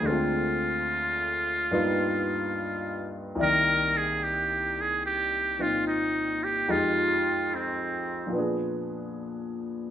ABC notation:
X:1
M:4/4
L:1/8
Q:"Swing" 1/4=73
K:Cm
V:1 name="Muted trumpet"
F6- F z | B A G A G F E G | F2 C2 z4 |]
V:2 name="Grand piano"
[D,,D,A,CF]4 [G,,G,^A,=B,^DF]4 | [C,,C,E,B,d]4- [C,,C,E,B,d] [B,,CEF]3 | [F,,F,A,EG]4 [B,,F,_CDA]4 |]